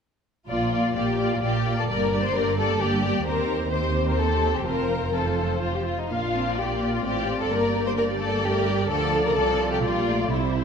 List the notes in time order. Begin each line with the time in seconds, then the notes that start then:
0.48 A#1 A#2 A#3 F4 D5
0.72 A#3 F4 D5
0.95 A#1 A#2 A#3 F4 G4 D5
1.18 A#3 F4 D5
1.32 F4
1.42 A#1 A#2 A#3 F4 G4 D5
1.65 A#3 F4 D5
1.78 A4
1.89 G1 G2 A#3 G4 A#4 D5
2.12 A#3 G4 D5
2.23 C5
2.34 G1 G2 A#3 G4 A#4 D5
2.57 A#3 G4 A4 D5
2.80 G1 G2 A#3 G4 D5
3.03 A#3 G4 D5
3.26 D#2 C4 G4 A#4 C5
3.71 C4 G4 C5
4.08 A#4
4.19 A4
4.55 G4
4.65 F1 F2 C4 F4 A#4 C5
5.14 C4 F4 A4 C5
5.61 F4
5.75 G4
5.85 F4
5.98 D#4
6.09 A#1 A#2 A#3 D4 F4 F5
6.34 C4
6.57 A#3 F4 G4 D5
6.94 F4
7.04 A1 A2 C4 G4 D5
7.40 A4
7.51 G1 G2 A#3 G4 A#4 D5
7.86 C5
7.97 A#4 D5
8.20 A4
8.44 A3 G4 A#4
8.68 G3
8.90 D2 D3 F3 A4 D5
9.26 A#4
9.36 C2 C3 F3 A4
9.71 G4
9.83 A#1 A#2 G3 F4 G4 D5
10.08 A3
10.32 C2 C3 G3 E4 G4 C5